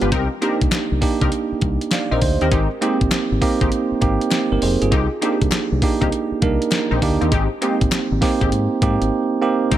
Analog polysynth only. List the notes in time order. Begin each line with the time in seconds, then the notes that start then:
0.01 D4 F4 G4 B4
0.12 C4 D#4 G4 A#4
0.41 C4 D#4 G4 A#4
1.21 C4 D#4 G4 A#4
2.11 C4 D#4 G4 A#4
2.41 C4 D#4 G4 A#4
2.51 G#3 C4 D#4 G4
2.81 G#3 C4 D#4 G4
3.61 G#3 C4 D#4 G4
4.91 A#3 C4 D#4 G4
5.21 A#3 C4 D#4 G4
6.01 A#3 C4 D#4 G4
6.91 A#3 C4 D#4 G4
7.21 A#3 C4 D#4 G4
7.32 G#3 C4 D#4 G4
7.61 G#3 C4 D#4 G4
8.41 G#3 C4 D#4 G4
9.71 A#3 C4 D#4 G4